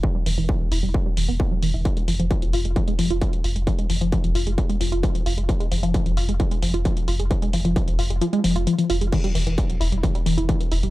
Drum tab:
CC |----------------|----------------|----------------|----------------|
HH |--o---o---o---o-|xxoxxxoxxxoxxxox|xxoxxxoxxxoxxxox|xxoxxxoxxxoxxxox|
BD |o---o---o---o---|o---o---o---o---|o---o---o---o---|o---o---o---o---|

CC |----------------|x---------------|
HH |xxoxxxoxxxoxxxox|xxoxxxoxxxoxxxox|
BD |o---o-----------|o---o---o---o---|